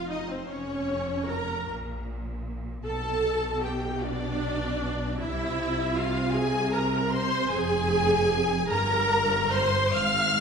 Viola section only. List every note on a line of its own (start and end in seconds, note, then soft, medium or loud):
0.08 0.29 D#4 medium
0.30 0.49 C4 medium
0.49 1.26 C#4 medium
1.28 1.68 A#4 loud
2.85 3.60 A4 loud
3.63 4.03 G4 medium
4.04 5.20 D4 loud
5.19 5.95 E4 loud
5.96 6.36 F4 loud
6.36 6.75 G#4 loud
6.74 7.13 A#4 loud
7.13 7.52 C5 loud
7.53 8.71 G#4 loud
8.70 9.52 A#4 loud
9.53 9.95 C5 loud
9.94 10.40 F5 loud